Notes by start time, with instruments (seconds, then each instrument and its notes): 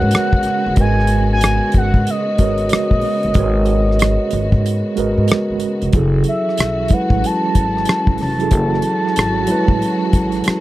Already playing: string section C#3 G#3 B3 F#4, tine electric piano G#3 F#4 A#4 B4 C#5 D#5, analog synth lead F#5
0.02 upright bass G#2
0.11 muted upright bass stroke, cross-stick, closed hi-hat
0.33 upright bass G#1, kick
0.43 cross-stick, closed hi-hat
0.66 upright bass G1
0.76 upright bass G#1, tine electric piano G#3 F#4 A#4 B4, kick, closed hi-hat
0.80 tine electric piano D#5, analog synth lead G#5
1.00 cross-stick
1.07 closed hi-hat
1.33 analog synth lead G#5
1.41 cross-stick, closed hi-hat
1.72 upright bass G#1, kick, closed hi-hat
1.77 analog synth lead F#5
1.94 upright bass G#2, kick
2.07 analog synth lead D#5, closed hi-hat
2.38 upright bass G#1, tine electric piano G#3 F#4 A#4 B4, kick, closed hi-hat
2.42 tine electric piano C#5
2.58 closed hi-hat
2.69 muted upright bass stroke, cross-stick, closed hi-hat
2.91 upright bass A#1, kick
3.01 open hi-hat
3.23 upright bass G1, closed hi-hat
3.34 upright bass G#1, tine electric piano G#3 F#4 A#4 B4, kick, closed hi-hat
3.39 tine electric piano C#5
3.66 closed hi-hat
3.91 cross-stick
3.99 cross-stick, closed hi-hat
4.31 upright bass G#1, closed hi-hat
4.52 upright bass G#2, kick
4.66 closed hi-hat
4.96 upright bass G#1, tine electric piano G#3 F#4 A#4 B4, closed hi-hat
5.00 tine electric piano D#5
5.18 upright bass G#2
5.28 muted upright bass stroke, cross-stick, closed hi-hat
5.50 upright bass G#1
5.60 closed hi-hat
5.82 upright bass F1, closed hi-hat
5.93 upright bass F#1, string section E3 F#3 C#4 F#4, tine electric piano F#3 E4 G#4, kick, closed hi-hat
5.97 tine electric piano A4
6.24 closed hi-hat
6.28 analog synth lead E5
6.49 cross-stick
6.58 upright bass B1, cross-stick, closed hi-hat
6.88 tine electric piano F#3 E4, kick, closed hi-hat
6.93 tine electric piano G#3 B4, analog synth lead F#5
7.10 upright bass A1, kick
7.24 analog synth lead A5, closed hi-hat
7.55 upright bass G#1, kick, closed hi-hat
7.77 cross-stick
7.85 cross-stick, closed hi-hat
8.07 upright bass A1, kick
8.18 upright bass F1, cross-stick, open hi-hat
8.22 analog synth lead A5
8.39 tine electric piano F#3 E4 G#4, closed hi-hat
8.43 tine electric piano A4
8.51 upright bass F#1, tine electric piano F#3 E4 F#4, string section F#4, kick, closed hi-hat
8.55 tine electric piano A4
8.74 cross-stick
8.82 closed hi-hat
9.07 cross-stick
9.16 upright bass G#1, cross-stick, closed hi-hat
9.47 tine electric piano F#3 G#3 E4, closed hi-hat
9.52 tine electric piano B4
9.68 upright bass A1, kick
9.82 closed hi-hat
10.13 upright bass G#1, kick, closed hi-hat
10.32 cross-stick, closed hi-hat
10.44 muted upright bass stroke, cross-stick, closed hi-hat